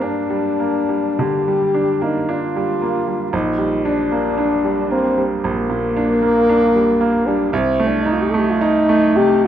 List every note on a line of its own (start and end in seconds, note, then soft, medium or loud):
0.00 1.15 G2 medium
0.00 0.30 G3 medium
0.00 0.20 A#3 medium
0.00 1.74 D4 medium
0.04 1.22 D4 medium
0.30 0.78 G3 medium
0.60 1.07 A#3 soft
0.89 1.36 G3 soft
1.19 1.64 D3 medium
1.19 2.05 G4 loud
1.48 1.91 G3 soft
1.74 2.17 D4 soft
2.01 2.44 A#3 soft
2.01 2.32 D#4 medium
2.29 2.71 D4 medium
2.29 3.33 F4 medium
2.56 2.98 G3 soft
2.82 3.23 A#3 soft
3.07 3.33 G3 soft
3.33 5.39 A#1 medium
3.33 3.87 D#4 medium
3.58 4.00 G3 medium
3.85 4.27 D4 medium
3.85 4.90 D4 medium
4.12 4.54 A#3 medium
4.38 4.80 D4 medium
4.65 5.06 G3 soft
4.91 5.32 A#3 soft
4.91 5.24 C4 loud
5.18 5.59 G3 medium
5.44 7.49 A#1 medium
5.44 7.28 A#3 loud
5.70 6.11 A#2 medium
5.97 6.38 D4 medium
6.22 6.63 A#3 medium
6.49 6.90 D4 medium
6.76 7.16 G3 medium
7.01 7.42 A#3 medium
7.26 7.53 G3 soft
7.26 7.52 D4 medium
7.53 9.47 C2 medium
7.53 7.89 C4 medium
7.80 8.22 A3 medium
7.87 8.04 D4 medium
8.02 8.14 D#4 medium
8.02 8.49 D#4 medium
8.13 8.23 F4 medium
8.22 8.32 G4 medium
8.30 8.77 A3 medium
8.30 8.40 A4 medium
8.39 8.52 G4 medium
8.51 8.64 F4 medium
8.61 9.05 D#4 medium
8.61 9.18 D#4 loud
8.89 9.33 A3 medium
9.16 9.47 C3 medium
9.16 9.46 G4 loud